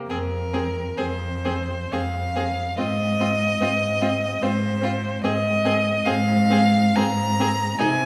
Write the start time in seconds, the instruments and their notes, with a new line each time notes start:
0.09 cello F2, viola C4, violin G#4 A#4
0.54 viola C4, violin G#4
0.97 cello F2, viola C4, violin G#4 C5
1.45 viola C4, violin G#4
1.92 cello F2, viola C4, violin G#4 F5
2.36 viola C4, violin G#4
2.77 cello G#2, viola C4, violin F4 D#5
3.20 viola C4, violin F4
3.61 cello G#2, viola C4, violin F4
4.01 viola C4, violin F4
4.41 cello G#2, viola C4, violin F4 C5
4.82 viola C4, violin F4
5.23 cello G#2, viola C4, violin G#4 D#5
5.65 viola C4, violin G#4
6.05 cello G#2, viola C4, violin G#4 F5
6.50 viola C4, violin G#4
6.96 cello G#2, viola C4, violin G#4 A#5
7.40 viola C4, violin G#4
7.79 cello C3, viola D#4, violin G#4 G#5